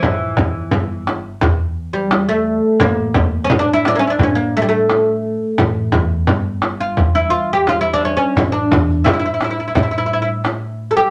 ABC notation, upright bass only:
X:1
M:4/4
L:1/8
Q:1/4=86
K:none
V:1 name="Upright bass" clef=bass
A,,, E,, G,,,2 E,,4 | A,,, E,, A,,2 A,,4 | A,,, E,, G,,,2 E,,4 | A,,, E,, z2 A,,4 |]